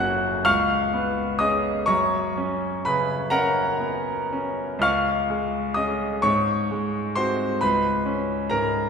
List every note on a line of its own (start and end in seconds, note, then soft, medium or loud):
0.00 0.43 F#1 medium
0.00 0.43 F#2 medium
0.00 0.28 A#3 medium
0.00 0.43 C#4 soft
0.00 0.43 F#4 medium
0.00 0.43 F#5 medium
0.00 0.49 G#5 medium
0.00 0.45 C#6 medium
0.00 0.46 F#6 medium
0.00 0.49 G#6 loud
0.45 1.85 C#2 medium
0.45 1.36 F5 medium
0.45 1.36 C#6 medium
0.45 1.39 F6 loud
0.93 1.69 B3 medium
1.39 1.85 C#4 soft
1.39 1.85 G#4 medium
1.39 1.85 D#5 medium
1.39 1.88 D#6 medium
1.86 4.80 F#2 medium
1.86 2.81 C#5 medium
1.86 2.81 A#5 medium
1.86 2.84 C#6 loud
2.38 3.13 C#4 medium
2.85 3.61 C#3 medium
2.85 3.29 B4 medium
2.85 3.31 B5 medium
3.30 4.12 C#4 medium
3.30 4.80 A#4 medium
3.30 4.80 F#5 medium
3.30 4.83 A#5 loud
3.80 4.33 B3 soft
4.33 4.84 C#4 medium
4.79 6.18 C#2 medium
4.79 5.73 F5 medium
4.79 5.73 C#6 medium
4.79 5.77 F6 loud
5.30 6.05 G#3 medium
5.74 6.20 C#4 soft
5.74 6.20 G#4 soft
5.74 6.20 D#5 medium
5.74 6.23 D#6 medium
6.22 7.58 G#2 medium
6.22 7.13 C#5 medium
6.22 7.16 C#6 loud
6.71 7.44 G#3 medium
7.15 7.58 C4 soft
7.15 7.58 F#4 soft
7.15 7.59 C5 medium
7.15 7.61 C6 medium
7.61 8.89 C#2 medium
7.61 8.47 B4 medium
7.61 8.51 B5 medium
8.06 8.78 C#4 medium
8.50 8.89 G#2 soft
8.50 8.89 A#4 medium
8.50 8.89 A#5 medium